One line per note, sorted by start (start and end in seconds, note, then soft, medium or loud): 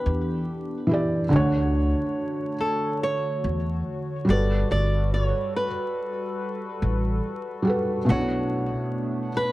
0.00 1.28 E3 medium
0.00 1.28 B3 medium
0.00 1.28 D4 medium
0.00 0.91 G4 medium
0.00 1.28 G4 medium
0.00 0.87 B4 medium
0.06 0.43 E2 medium
0.87 1.21 E3 medium
0.87 1.22 E4 medium
0.91 1.23 G4 medium
0.91 1.24 D5 medium
1.29 1.92 D2 medium
1.29 2.52 D3 medium
1.29 4.25 D3 medium
1.29 4.25 A3 medium
1.29 2.53 D4 medium
1.29 8.04 F#4 medium
1.29 4.24 C#5 medium
1.34 2.54 F#4 medium
1.34 2.55 C#5 loud
2.60 2.99 A4 medium
3.03 4.25 C#5 loud
3.44 3.81 E2 medium
4.25 4.65 G1 medium
4.25 5.63 G3 medium
4.25 8.04 G3 medium
4.25 5.65 F#4 medium
4.25 8.04 A4 medium
4.25 8.04 B4 medium
4.29 5.66 A4 medium
4.29 5.67 B4 medium
4.29 4.70 D5 loud
4.71 5.31 G1 medium
4.71 5.13 D5 medium
5.14 5.52 C#5 medium
5.56 7.63 B4 medium
6.82 7.19 A1 medium
7.62 7.97 G3 medium
7.62 7.98 F#4 medium
7.67 7.99 A4 medium
7.67 8.00 B4 medium
8.05 9.28 B2 medium
8.05 9.28 A3 medium
8.05 9.52 A3 medium
8.05 9.52 B3 medium
8.05 8.16 C#4 medium
8.05 9.52 D4 medium
8.09 8.69 B1 loud
8.09 9.30 E4 medium
8.09 9.36 F#4 loud
8.09 9.31 C#5 medium
8.15 9.32 D4 medium
9.37 9.52 B4 loud